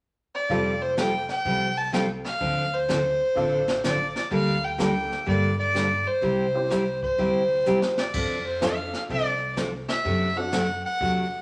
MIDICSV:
0, 0, Header, 1, 6, 480
1, 0, Start_track
1, 0, Key_signature, -1, "major"
1, 0, Tempo, 477707
1, 503, Time_signature, 4, 2, 24, 8
1, 11472, End_track
2, 0, Start_track
2, 0, Title_t, "Fiddle"
2, 0, Program_c, 0, 110
2, 351, Note_on_c, 0, 74, 85
2, 827, Note_on_c, 0, 72, 79
2, 842, Note_off_c, 0, 74, 0
2, 986, Note_off_c, 0, 72, 0
2, 996, Note_on_c, 0, 79, 93
2, 1284, Note_off_c, 0, 79, 0
2, 1311, Note_on_c, 0, 79, 107
2, 1786, Note_on_c, 0, 81, 92
2, 1801, Note_off_c, 0, 79, 0
2, 1941, Note_off_c, 0, 81, 0
2, 1948, Note_on_c, 0, 79, 87
2, 2089, Note_off_c, 0, 79, 0
2, 2259, Note_on_c, 0, 77, 96
2, 2746, Note_on_c, 0, 72, 96
2, 2761, Note_off_c, 0, 77, 0
2, 3861, Note_off_c, 0, 72, 0
2, 3867, Note_on_c, 0, 74, 90
2, 4159, Note_off_c, 0, 74, 0
2, 4183, Note_on_c, 0, 74, 76
2, 4332, Note_off_c, 0, 74, 0
2, 4345, Note_on_c, 0, 77, 98
2, 4665, Note_on_c, 0, 79, 89
2, 4680, Note_off_c, 0, 77, 0
2, 4824, Note_off_c, 0, 79, 0
2, 4829, Note_on_c, 0, 79, 89
2, 5272, Note_off_c, 0, 79, 0
2, 5308, Note_on_c, 0, 74, 87
2, 5600, Note_off_c, 0, 74, 0
2, 5625, Note_on_c, 0, 74, 92
2, 6106, Note_on_c, 0, 72, 91
2, 6121, Note_off_c, 0, 74, 0
2, 7060, Note_off_c, 0, 72, 0
2, 7066, Note_on_c, 0, 72, 92
2, 8025, Note_on_c, 0, 74, 79
2, 8040, Note_off_c, 0, 72, 0
2, 8499, Note_off_c, 0, 74, 0
2, 8505, Note_on_c, 0, 72, 74
2, 8668, Note_on_c, 0, 77, 76
2, 8683, Note_off_c, 0, 72, 0
2, 8983, Note_off_c, 0, 77, 0
2, 8996, Note_on_c, 0, 77, 77
2, 9066, Note_off_c, 0, 77, 0
2, 9155, Note_on_c, 0, 74, 85
2, 9596, Note_off_c, 0, 74, 0
2, 9934, Note_on_c, 0, 76, 89
2, 10426, Note_on_c, 0, 78, 107
2, 10441, Note_off_c, 0, 76, 0
2, 10903, Note_off_c, 0, 78, 0
2, 10908, Note_on_c, 0, 78, 90
2, 11472, Note_off_c, 0, 78, 0
2, 11472, End_track
3, 0, Start_track
3, 0, Title_t, "Honky-tonk piano"
3, 0, Program_c, 1, 3
3, 492, Note_on_c, 1, 60, 51
3, 500, Note_on_c, 1, 65, 55
3, 506, Note_on_c, 1, 67, 54
3, 510, Note_on_c, 1, 69, 63
3, 1838, Note_off_c, 1, 60, 0
3, 1842, Note_off_c, 1, 65, 0
3, 1846, Note_off_c, 1, 67, 0
3, 1848, Note_off_c, 1, 69, 0
3, 3366, Note_on_c, 1, 60, 66
3, 3370, Note_on_c, 1, 62, 61
3, 3377, Note_on_c, 1, 65, 65
3, 3385, Note_on_c, 1, 69, 73
3, 4107, Note_off_c, 1, 60, 0
3, 4109, Note_off_c, 1, 62, 0
3, 4112, Note_off_c, 1, 65, 0
3, 4117, Note_off_c, 1, 69, 0
3, 4806, Note_on_c, 1, 58, 56
3, 4812, Note_on_c, 1, 62, 47
3, 4819, Note_on_c, 1, 67, 48
3, 4826, Note_on_c, 1, 69, 64
3, 5548, Note_off_c, 1, 58, 0
3, 5550, Note_off_c, 1, 62, 0
3, 5554, Note_off_c, 1, 67, 0
3, 5557, Note_off_c, 1, 69, 0
3, 6576, Note_on_c, 1, 60, 65
3, 6582, Note_on_c, 1, 64, 59
3, 6585, Note_on_c, 1, 67, 58
3, 6594, Note_on_c, 1, 72, 70
3, 6724, Note_off_c, 1, 60, 0
3, 6727, Note_off_c, 1, 64, 0
3, 6729, Note_off_c, 1, 67, 0
3, 6733, Note_off_c, 1, 72, 0
3, 8650, Note_on_c, 1, 60, 58
3, 8656, Note_on_c, 1, 62, 51
3, 8663, Note_on_c, 1, 65, 53
3, 8669, Note_on_c, 1, 69, 62
3, 9390, Note_off_c, 1, 60, 0
3, 9394, Note_off_c, 1, 62, 0
3, 9397, Note_off_c, 1, 65, 0
3, 9400, Note_off_c, 1, 69, 0
3, 10407, Note_on_c, 1, 60, 62
3, 10414, Note_on_c, 1, 62, 56
3, 10419, Note_on_c, 1, 66, 58
3, 10427, Note_on_c, 1, 69, 68
3, 10561, Note_off_c, 1, 60, 0
3, 10564, Note_off_c, 1, 62, 0
3, 10567, Note_off_c, 1, 66, 0
3, 10571, Note_off_c, 1, 69, 0
3, 11472, End_track
4, 0, Start_track
4, 0, Title_t, "Steel-string acoustic guitar"
4, 0, Program_c, 2, 25
4, 501, Note_on_c, 2, 53, 59
4, 503, Note_on_c, 2, 55, 58
4, 510, Note_on_c, 2, 60, 61
4, 513, Note_on_c, 2, 65, 60
4, 517, Note_on_c, 2, 69, 67
4, 728, Note_off_c, 2, 53, 0
4, 729, Note_off_c, 2, 55, 0
4, 733, Note_off_c, 2, 60, 0
4, 734, Note_off_c, 2, 65, 0
4, 736, Note_off_c, 2, 69, 0
4, 975, Note_on_c, 2, 53, 67
4, 981, Note_on_c, 2, 55, 65
4, 983, Note_on_c, 2, 60, 65
4, 986, Note_on_c, 2, 65, 68
4, 990, Note_on_c, 2, 69, 75
4, 1099, Note_off_c, 2, 53, 0
4, 1102, Note_off_c, 2, 55, 0
4, 1103, Note_off_c, 2, 60, 0
4, 1104, Note_off_c, 2, 65, 0
4, 1106, Note_off_c, 2, 69, 0
4, 1455, Note_on_c, 2, 53, 49
4, 1459, Note_on_c, 2, 55, 46
4, 1463, Note_on_c, 2, 60, 61
4, 1465, Note_on_c, 2, 65, 57
4, 1471, Note_on_c, 2, 69, 54
4, 1685, Note_off_c, 2, 53, 0
4, 1687, Note_off_c, 2, 55, 0
4, 1689, Note_off_c, 2, 60, 0
4, 1690, Note_off_c, 2, 65, 0
4, 1693, Note_off_c, 2, 69, 0
4, 1932, Note_on_c, 2, 53, 64
4, 1940, Note_on_c, 2, 55, 64
4, 1944, Note_on_c, 2, 60, 76
4, 1945, Note_on_c, 2, 65, 73
4, 1949, Note_on_c, 2, 69, 78
4, 2056, Note_off_c, 2, 53, 0
4, 2060, Note_off_c, 2, 55, 0
4, 2063, Note_off_c, 2, 60, 0
4, 2063, Note_off_c, 2, 65, 0
4, 2065, Note_off_c, 2, 69, 0
4, 2411, Note_on_c, 2, 50, 56
4, 2418, Note_on_c, 2, 53, 54
4, 2421, Note_on_c, 2, 60, 64
4, 2421, Note_on_c, 2, 62, 62
4, 2428, Note_on_c, 2, 69, 59
4, 2642, Note_off_c, 2, 50, 0
4, 2646, Note_off_c, 2, 53, 0
4, 2647, Note_off_c, 2, 60, 0
4, 2647, Note_off_c, 2, 62, 0
4, 2651, Note_off_c, 2, 69, 0
4, 2898, Note_on_c, 2, 50, 74
4, 2901, Note_on_c, 2, 53, 71
4, 2903, Note_on_c, 2, 60, 71
4, 2909, Note_on_c, 2, 62, 71
4, 2911, Note_on_c, 2, 69, 79
4, 3019, Note_off_c, 2, 50, 0
4, 3021, Note_off_c, 2, 53, 0
4, 3022, Note_off_c, 2, 60, 0
4, 3025, Note_off_c, 2, 62, 0
4, 3026, Note_off_c, 2, 69, 0
4, 3379, Note_on_c, 2, 50, 54
4, 3383, Note_on_c, 2, 53, 52
4, 3383, Note_on_c, 2, 60, 55
4, 3390, Note_on_c, 2, 62, 60
4, 3392, Note_on_c, 2, 69, 65
4, 3606, Note_off_c, 2, 50, 0
4, 3608, Note_off_c, 2, 53, 0
4, 3609, Note_off_c, 2, 60, 0
4, 3612, Note_off_c, 2, 62, 0
4, 3613, Note_off_c, 2, 69, 0
4, 3862, Note_on_c, 2, 50, 63
4, 3864, Note_on_c, 2, 53, 71
4, 3869, Note_on_c, 2, 60, 72
4, 3872, Note_on_c, 2, 62, 75
4, 3876, Note_on_c, 2, 69, 75
4, 3981, Note_off_c, 2, 50, 0
4, 3982, Note_off_c, 2, 53, 0
4, 3985, Note_off_c, 2, 60, 0
4, 3986, Note_off_c, 2, 62, 0
4, 3988, Note_off_c, 2, 69, 0
4, 4327, Note_on_c, 2, 50, 59
4, 4333, Note_on_c, 2, 55, 65
4, 4335, Note_on_c, 2, 58, 59
4, 4339, Note_on_c, 2, 62, 69
4, 4341, Note_on_c, 2, 69, 65
4, 4560, Note_off_c, 2, 50, 0
4, 4563, Note_off_c, 2, 55, 0
4, 4564, Note_off_c, 2, 58, 0
4, 4566, Note_off_c, 2, 62, 0
4, 4567, Note_off_c, 2, 69, 0
4, 4804, Note_on_c, 2, 50, 58
4, 4807, Note_on_c, 2, 55, 75
4, 4812, Note_on_c, 2, 58, 77
4, 4816, Note_on_c, 2, 62, 75
4, 4818, Note_on_c, 2, 69, 77
4, 4932, Note_off_c, 2, 50, 0
4, 4934, Note_off_c, 2, 55, 0
4, 4936, Note_off_c, 2, 58, 0
4, 4938, Note_off_c, 2, 62, 0
4, 4939, Note_off_c, 2, 69, 0
4, 5284, Note_on_c, 2, 50, 52
4, 5289, Note_on_c, 2, 55, 54
4, 5294, Note_on_c, 2, 58, 56
4, 5298, Note_on_c, 2, 62, 58
4, 5299, Note_on_c, 2, 69, 57
4, 5519, Note_off_c, 2, 50, 0
4, 5521, Note_off_c, 2, 55, 0
4, 5524, Note_off_c, 2, 58, 0
4, 5526, Note_off_c, 2, 62, 0
4, 5527, Note_off_c, 2, 69, 0
4, 5767, Note_on_c, 2, 50, 64
4, 5772, Note_on_c, 2, 55, 62
4, 5775, Note_on_c, 2, 58, 66
4, 5780, Note_on_c, 2, 62, 79
4, 5781, Note_on_c, 2, 69, 77
4, 5894, Note_off_c, 2, 50, 0
4, 5897, Note_off_c, 2, 55, 0
4, 5898, Note_off_c, 2, 58, 0
4, 5900, Note_off_c, 2, 62, 0
4, 5901, Note_off_c, 2, 69, 0
4, 6244, Note_on_c, 2, 48, 59
4, 6251, Note_on_c, 2, 60, 59
4, 6252, Note_on_c, 2, 55, 61
4, 6258, Note_on_c, 2, 64, 60
4, 6262, Note_on_c, 2, 67, 64
4, 6479, Note_off_c, 2, 48, 0
4, 6483, Note_off_c, 2, 55, 0
4, 6483, Note_off_c, 2, 60, 0
4, 6486, Note_off_c, 2, 64, 0
4, 6488, Note_off_c, 2, 67, 0
4, 6731, Note_on_c, 2, 48, 69
4, 6736, Note_on_c, 2, 55, 71
4, 6736, Note_on_c, 2, 60, 70
4, 6740, Note_on_c, 2, 64, 71
4, 6744, Note_on_c, 2, 67, 67
4, 6856, Note_off_c, 2, 48, 0
4, 6859, Note_off_c, 2, 55, 0
4, 6859, Note_off_c, 2, 60, 0
4, 6861, Note_off_c, 2, 64, 0
4, 6863, Note_off_c, 2, 67, 0
4, 7215, Note_on_c, 2, 48, 59
4, 7220, Note_on_c, 2, 55, 58
4, 7226, Note_on_c, 2, 64, 56
4, 7227, Note_on_c, 2, 60, 51
4, 7229, Note_on_c, 2, 67, 61
4, 7445, Note_off_c, 2, 48, 0
4, 7448, Note_off_c, 2, 55, 0
4, 7450, Note_off_c, 2, 64, 0
4, 7451, Note_off_c, 2, 60, 0
4, 7452, Note_off_c, 2, 67, 0
4, 7695, Note_on_c, 2, 48, 69
4, 7700, Note_on_c, 2, 55, 71
4, 7705, Note_on_c, 2, 60, 73
4, 7708, Note_on_c, 2, 64, 66
4, 7710, Note_on_c, 2, 67, 74
4, 7819, Note_off_c, 2, 48, 0
4, 7821, Note_off_c, 2, 55, 0
4, 7824, Note_off_c, 2, 60, 0
4, 7825, Note_off_c, 2, 64, 0
4, 7826, Note_off_c, 2, 67, 0
4, 8180, Note_on_c, 2, 53, 53
4, 8189, Note_on_c, 2, 60, 61
4, 8191, Note_on_c, 2, 62, 57
4, 8196, Note_on_c, 2, 69, 61
4, 8408, Note_off_c, 2, 53, 0
4, 8412, Note_off_c, 2, 60, 0
4, 8413, Note_off_c, 2, 62, 0
4, 8416, Note_off_c, 2, 69, 0
4, 8661, Note_on_c, 2, 53, 62
4, 8664, Note_on_c, 2, 60, 75
4, 8669, Note_on_c, 2, 62, 75
4, 8672, Note_on_c, 2, 69, 73
4, 8782, Note_off_c, 2, 53, 0
4, 8783, Note_off_c, 2, 60, 0
4, 8786, Note_off_c, 2, 62, 0
4, 8788, Note_off_c, 2, 69, 0
4, 9138, Note_on_c, 2, 53, 46
4, 9147, Note_on_c, 2, 60, 59
4, 9148, Note_on_c, 2, 62, 56
4, 9149, Note_on_c, 2, 69, 62
4, 9367, Note_off_c, 2, 53, 0
4, 9372, Note_off_c, 2, 60, 0
4, 9372, Note_off_c, 2, 62, 0
4, 9373, Note_off_c, 2, 69, 0
4, 9611, Note_on_c, 2, 53, 61
4, 9619, Note_on_c, 2, 60, 64
4, 9624, Note_on_c, 2, 62, 69
4, 9626, Note_on_c, 2, 69, 76
4, 9737, Note_off_c, 2, 53, 0
4, 9741, Note_off_c, 2, 60, 0
4, 9744, Note_off_c, 2, 62, 0
4, 9745, Note_off_c, 2, 69, 0
4, 10093, Note_on_c, 2, 48, 54
4, 10102, Note_on_c, 2, 54, 61
4, 10106, Note_on_c, 2, 57, 58
4, 10106, Note_on_c, 2, 62, 68
4, 10111, Note_on_c, 2, 66, 60
4, 10325, Note_off_c, 2, 48, 0
4, 10329, Note_off_c, 2, 54, 0
4, 10331, Note_off_c, 2, 62, 0
4, 10332, Note_off_c, 2, 57, 0
4, 10334, Note_off_c, 2, 66, 0
4, 10570, Note_on_c, 2, 48, 61
4, 10578, Note_on_c, 2, 54, 64
4, 10579, Note_on_c, 2, 57, 75
4, 10582, Note_on_c, 2, 62, 75
4, 10585, Note_on_c, 2, 66, 70
4, 10697, Note_off_c, 2, 48, 0
4, 10701, Note_off_c, 2, 54, 0
4, 10702, Note_off_c, 2, 57, 0
4, 10703, Note_off_c, 2, 62, 0
4, 10705, Note_off_c, 2, 66, 0
4, 11056, Note_on_c, 2, 48, 49
4, 11062, Note_on_c, 2, 57, 55
4, 11063, Note_on_c, 2, 54, 54
4, 11069, Note_on_c, 2, 62, 50
4, 11071, Note_on_c, 2, 66, 53
4, 11287, Note_off_c, 2, 48, 0
4, 11290, Note_off_c, 2, 54, 0
4, 11290, Note_off_c, 2, 57, 0
4, 11293, Note_off_c, 2, 62, 0
4, 11294, Note_off_c, 2, 66, 0
4, 11472, End_track
5, 0, Start_track
5, 0, Title_t, "Upright bass"
5, 0, Program_c, 3, 32
5, 500, Note_on_c, 3, 29, 97
5, 1268, Note_off_c, 3, 29, 0
5, 1461, Note_on_c, 3, 36, 76
5, 2229, Note_off_c, 3, 36, 0
5, 2420, Note_on_c, 3, 38, 89
5, 3188, Note_off_c, 3, 38, 0
5, 3377, Note_on_c, 3, 33, 76
5, 4146, Note_off_c, 3, 33, 0
5, 4336, Note_on_c, 3, 38, 89
5, 5106, Note_off_c, 3, 38, 0
5, 5300, Note_on_c, 3, 43, 84
5, 6068, Note_off_c, 3, 43, 0
5, 6261, Note_on_c, 3, 36, 95
5, 7030, Note_off_c, 3, 36, 0
5, 7220, Note_on_c, 3, 38, 79
5, 7629, Note_off_c, 3, 38, 0
5, 7700, Note_on_c, 3, 40, 76
5, 8110, Note_off_c, 3, 40, 0
5, 8178, Note_on_c, 3, 41, 94
5, 8948, Note_off_c, 3, 41, 0
5, 9136, Note_on_c, 3, 36, 79
5, 9907, Note_off_c, 3, 36, 0
5, 10098, Note_on_c, 3, 42, 96
5, 10869, Note_off_c, 3, 42, 0
5, 11060, Note_on_c, 3, 40, 90
5, 11470, Note_off_c, 3, 40, 0
5, 11472, End_track
6, 0, Start_track
6, 0, Title_t, "Drums"
6, 500, Note_on_c, 9, 36, 33
6, 504, Note_on_c, 9, 25, 45
6, 601, Note_off_c, 9, 36, 0
6, 980, Note_on_c, 9, 38, 59
6, 980, Note_on_c, 9, 44, 48
6, 1081, Note_off_c, 9, 38, 0
6, 1081, Note_off_c, 9, 44, 0
6, 1294, Note_on_c, 9, 38, 32
6, 1395, Note_off_c, 9, 38, 0
6, 1460, Note_on_c, 9, 36, 31
6, 1465, Note_off_c, 9, 25, 0
6, 1465, Note_on_c, 9, 25, 47
6, 1560, Note_off_c, 9, 36, 0
6, 1946, Note_on_c, 9, 38, 58
6, 1946, Note_on_c, 9, 44, 56
6, 2047, Note_off_c, 9, 38, 0
6, 2047, Note_off_c, 9, 44, 0
6, 2261, Note_on_c, 9, 38, 32
6, 2362, Note_off_c, 9, 38, 0
6, 2422, Note_on_c, 9, 36, 33
6, 2430, Note_off_c, 9, 25, 0
6, 2430, Note_on_c, 9, 25, 41
6, 2522, Note_off_c, 9, 36, 0
6, 2907, Note_on_c, 9, 38, 55
6, 2907, Note_on_c, 9, 44, 57
6, 3008, Note_off_c, 9, 38, 0
6, 3008, Note_off_c, 9, 44, 0
6, 3378, Note_on_c, 9, 36, 34
6, 3381, Note_off_c, 9, 25, 0
6, 3381, Note_on_c, 9, 25, 50
6, 3479, Note_off_c, 9, 36, 0
6, 3696, Note_on_c, 9, 38, 55
6, 3796, Note_off_c, 9, 38, 0
6, 3859, Note_on_c, 9, 38, 58
6, 3859, Note_on_c, 9, 44, 57
6, 3960, Note_off_c, 9, 38, 0
6, 3960, Note_off_c, 9, 44, 0
6, 4178, Note_on_c, 9, 38, 36
6, 4278, Note_off_c, 9, 38, 0
6, 4333, Note_off_c, 9, 25, 0
6, 4333, Note_on_c, 9, 25, 45
6, 4336, Note_on_c, 9, 36, 29
6, 4437, Note_off_c, 9, 36, 0
6, 4819, Note_on_c, 9, 38, 51
6, 4819, Note_on_c, 9, 44, 63
6, 4919, Note_off_c, 9, 38, 0
6, 4919, Note_off_c, 9, 44, 0
6, 5142, Note_on_c, 9, 38, 31
6, 5242, Note_off_c, 9, 38, 0
6, 5302, Note_on_c, 9, 36, 34
6, 5303, Note_off_c, 9, 25, 0
6, 5303, Note_on_c, 9, 25, 39
6, 5402, Note_off_c, 9, 36, 0
6, 5786, Note_on_c, 9, 38, 60
6, 5786, Note_on_c, 9, 44, 59
6, 5886, Note_off_c, 9, 38, 0
6, 5886, Note_off_c, 9, 44, 0
6, 6263, Note_on_c, 9, 36, 30
6, 6268, Note_off_c, 9, 25, 0
6, 6268, Note_on_c, 9, 25, 45
6, 6363, Note_off_c, 9, 36, 0
6, 6743, Note_on_c, 9, 38, 53
6, 6743, Note_on_c, 9, 44, 49
6, 6843, Note_off_c, 9, 38, 0
6, 6843, Note_off_c, 9, 44, 0
6, 7059, Note_on_c, 9, 36, 40
6, 7160, Note_off_c, 9, 36, 0
6, 7222, Note_on_c, 9, 36, 31
6, 7223, Note_off_c, 9, 25, 0
6, 7223, Note_on_c, 9, 25, 44
6, 7323, Note_off_c, 9, 36, 0
6, 7699, Note_on_c, 9, 44, 61
6, 7799, Note_off_c, 9, 44, 0
6, 7858, Note_on_c, 9, 38, 55
6, 7959, Note_off_c, 9, 38, 0
6, 8014, Note_on_c, 9, 38, 66
6, 8114, Note_off_c, 9, 38, 0
6, 8175, Note_off_c, 9, 25, 0
6, 8175, Note_on_c, 9, 25, 49
6, 8175, Note_on_c, 9, 49, 67
6, 8180, Note_on_c, 9, 36, 64
6, 8275, Note_off_c, 9, 49, 0
6, 8281, Note_off_c, 9, 36, 0
6, 8660, Note_on_c, 9, 38, 54
6, 8660, Note_on_c, 9, 44, 52
6, 8760, Note_off_c, 9, 38, 0
6, 8760, Note_off_c, 9, 44, 0
6, 8977, Note_on_c, 9, 38, 31
6, 9078, Note_off_c, 9, 38, 0
6, 9134, Note_off_c, 9, 25, 0
6, 9134, Note_on_c, 9, 25, 46
6, 9139, Note_on_c, 9, 36, 34
6, 9239, Note_off_c, 9, 36, 0
6, 9618, Note_on_c, 9, 38, 59
6, 9618, Note_on_c, 9, 44, 60
6, 9718, Note_off_c, 9, 38, 0
6, 9718, Note_off_c, 9, 44, 0
6, 9935, Note_on_c, 9, 38, 35
6, 10035, Note_off_c, 9, 38, 0
6, 10096, Note_off_c, 9, 25, 0
6, 10096, Note_on_c, 9, 25, 47
6, 10098, Note_on_c, 9, 36, 30
6, 10199, Note_off_c, 9, 36, 0
6, 10577, Note_on_c, 9, 38, 58
6, 10577, Note_on_c, 9, 44, 49
6, 10678, Note_off_c, 9, 38, 0
6, 10678, Note_off_c, 9, 44, 0
6, 11059, Note_off_c, 9, 25, 0
6, 11059, Note_on_c, 9, 25, 48
6, 11060, Note_on_c, 9, 36, 33
6, 11161, Note_off_c, 9, 36, 0
6, 11472, Note_off_c, 9, 25, 0
6, 11472, End_track
0, 0, End_of_file